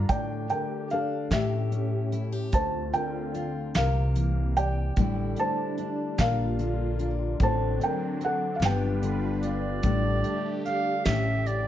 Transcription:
Already playing: D3 D4 A#5
0.09 A2 A3 G4 D5 G5, kick, closed hi-hat
0.50 D3 A#4 G5, closed hi-hat
0.90 D4 A4 F5, closed hi-hat
1.30 A2 A3 C#4 G4 E5, kick, snare, closed hi-hat
1.35 G4
1.71 C#4, closed hi-hat
2.12 E4, closed hi-hat
2.32 G4
2.52 D2 D3 C4 F4 C5 A5, kick, closed hi-hat
2.93 D3 A#4 G5, closed hi-hat
3.34 F4, closed hi-hat
3.73 C2 C3 E3 G3 A#3 G4 F5, snare, closed hi-hat
3.78 A#4
4.15 E3, closed hi-hat
4.56 G4 D5 G5, closed hi-hat
4.96 A1 A2 D3 G3 A3 D4 E4, kick, closed hi-hat
5.36 D3 A5, closed hi-hat
5.40 C5
5.78 D4, closed hi-hat
6.18 A#1 A#2 A#3 F4 A#4 F5, kick, snare, closed hi-hat
6.59 D3, closed hi-hat
6.99 D4, closed hi-hat
7.40 A1 A2 D3 F#3 C4 D4 A5, kick, closed hi-hat
7.44 C5
7.80 D3 G5, closed hi-hat
7.84 A#4
8.20 C4, closed hi-hat
8.25 A4 F#5
8.56 G1 F5
8.61 G2 D3 G3 B3 F4 G4 B4, snare, closed hi-hat
8.65 B4 G5
9.02 D3, closed hi-hat
9.42 F4 D5, closed hi-hat
9.83 A1 A2 D3 G3 A3 D4 G4, kick, closed hi-hat
10.24 D3, closed hi-hat
10.65 D4 F5, closed hi-hat
11.05 A1 A2 C#3 C#4 E4 G4 E5, kick, snare, closed hi-hat
11.46 D5, closed hi-hat

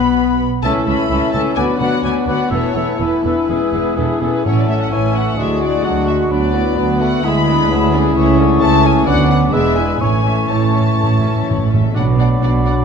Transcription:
Already playing: B1 B2 B3 B4 B5
0.63 C#2 E3 A3 C#4 E4 A4 E5 A5 E6
0.86 C#2 E3 C#4 E4 A4 E5 B5 E6
1.09 C#2 E3 C#4 E4 A4 E5 E6
1.32 C#2 E3 C#4 E4 A4 E5 A5 E6
1.55 D2 F#3 B3 D4 F#4 B4 D5 G#5 D6
1.79 D2 F#3 B3 F#4 B4 D5 F#5 D6
2.03 D2 F#3 B3 F#4 B4 D5 G#5 D6
2.27 D2 F#3 B3 F#4 B4 D5 F#5 D6
2.50 E1 E2 E3 A3 B3 E4 A4 B4 C#5 E6
2.75 E1 E2 E3 B3 E4 A4 B4 E6
3.00 E1 E2 E3 B3 E4 A4 B4 E6
3.24 E1 E2 E3 B3 D4 E4 A4 B4 E6
3.48 E1 E2 E3 G#3 B3 C#4 E4 G#4 B4 E6
3.73 E1 E2 E3 B3 E4 G#4 B4 E6
3.96 E1 E2 E3 B3 D4 E4 G#4 A4 B4 E6
4.11 G#4
4.21 E1 E2 E3 B3 C#4 E4 G#4 A4 B4 E6
4.35 B4
4.45 A1 A2 F#3 C#4 E4 A4 C#5 A5
4.59 D5
4.68 A3 C#4 A4 E5
4.82 F#5
4.91 A1 A2 E3 C#4 E4 C#5 G#5 C#6
5.15 A3 C#4 A4 E5 F#5
5.38 D2 F#3 G#3 D4 E4 F#4 G#4 A4 D5 E5 C#6
5.61 A3 F#4 D5 F#5
5.84 D2 F#3 D4 F#4 A4 D5 F#5
6.07 A3 F#4 E5 F#5
6.30 D2 F#3 B3 D4 B4 D5 B5
6.53 B3 E4 F#4 D5
6.76 D2 F#3 B3 D4 F#4 B4
7.00 A3 B3 F#4 D5 F#5
7.24 D2 G#3 E4 G#4 B4 E5 B5
7.47 B3 D4 G#4 D5
7.70 D2 F#3 G#3 D4 E4 B4 E5 B5
7.92 B3 C#4 D4 G#4 D5
8.15 C#2 E3 A3 E4 C#5 E5 C#6
8.38 D3 C#4 A4 C#5
8.61 C#2 E3 A3 E4 C#5 E5 A5
8.83 C#4 A4 C#5 G#5
9.05 D2 F#3 B3 D4 F#4 B4 D5 F#5 D6
9.28 B3 D4 B4 F#5
9.52 E1 E2 G#3 B3 G#4 B4 D5 E5 E6
9.75 B3 E4 B4 E5 G#5
10.00 A1 A2 E3 A3 C#4 E4 C#5 G#5 C#6
10.09 A2
10.17 A2
10.25 A2 C#4 A4 E5
10.32 A2
10.41 A2
10.49 A1 A2 A3 E4 C#5 A5
10.56 A2
10.65 A2
10.74 C#4 A4 E5
10.80 A2
10.87 A2
10.95 A1 A2 A3 E4 C#5
11.03 A2
11.11 A2
11.19 A2 E5
11.23 C#4 A4
11.27 A2
11.35 A2
11.43 A2
11.47 A1 A2 A3 E4 C#5
11.58 A2
11.66 A2
11.71 A2 C#4 A4 E5
11.81 A2
11.95 B1 B2 F#3 D4 D5 F#5 B5
12.18 D4 D5 F#5
12.42 B1 B2 D4 D5 F#5
12.65 D4 D5 F#5

